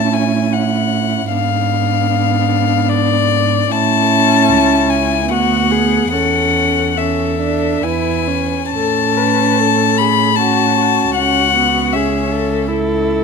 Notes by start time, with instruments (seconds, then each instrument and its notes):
Already playing: cello A2, viola C#4, violin E4 A5
0.13 violin G#5
0.53 violin F#5
1.32 cello G#2, viola B3, violin D4 F5
2.89 violin D5
3.71 cello A2, viola C#4, violin E4 A5
4.50 cello C#2
4.90 violin G#5
5.29 cello D2, viola B3, violin F#4 F#5
5.71 violin G#4
6.12 cello E2, viola C#4, violin A4 F#5
6.97 viola C#4, violin A4 E5
7.41 viola D4
7.83 cello E2, viola E4, violin B4 G#5
8.28 viola C#4
8.71 cello A2, viola C#4, violin A4 A5
9.16 violin B4
9.58 violin A4
9.97 violin G#4 B5
10.36 viola C#4, violin F#4 A5
10.81 violin F#4
11.16 cello C#2, viola C#4, violin F#5
11.56 viola B3
11.93 viola C#4, violin G#4 E5
12.31 violin A4
12.68 viola E4, violin A4